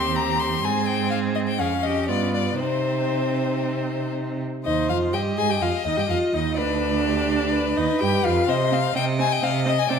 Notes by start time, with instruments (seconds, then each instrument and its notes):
Already playing: cello D#2, viola C4, violin G4 C6
0.16 violin A#5
0.40 violin C6
0.65 cello G#2, viola C4, violin G#4 G#5
0.88 violin G5
1.11 violin F5
1.35 violin D#5
1.48 violin G5
1.59 cello F2, viola C#4, violin G#4 F5
1.83 violin G4 D#5
2.09 cello G2, viola B3, violin F4 D5
2.34 violin D5
2.60 cello C3, viola C4, violin D#4 C5
4.65 cello D#2, viola D#4, violin C5 D#5
4.89 cello F2, viola F4, violin F5
5.13 cello G2, viola G4, violin D#5 G5
5.38 cello G#2, viola G#4, violin G#5
5.50 cello G2, viola G4, violin G5
5.62 cello F2, viola F4, violin F5
5.86 cello D#2, viola D#4, violin D#5
5.97 cello G2, viola G4, violin G5
6.10 cello F2, viola F4, violin F5
6.33 cello D#2, viola D#4, violin D#5
6.57 cello D2, viola D4, violin B4 D5
7.06 violin G4
7.53 violin B4
7.77 cello D#2, viola D#4, violin D#5
8.01 cello G2, viola G4, violin G5
8.25 cello F2, viola F4, violin F5
8.48 cello C3, viola C4, violin C5 D#5
8.72 viola C4, violin F5
8.95 cello C3, viola C4, violin D#5 G5
9.19 viola C4, violin G#5
9.32 violin G5
9.42 cello C3, viola C4, violin F5
9.66 viola C4, violin D#5
9.79 violin G#5
9.89 cello C3, viola C4, violin D5 G5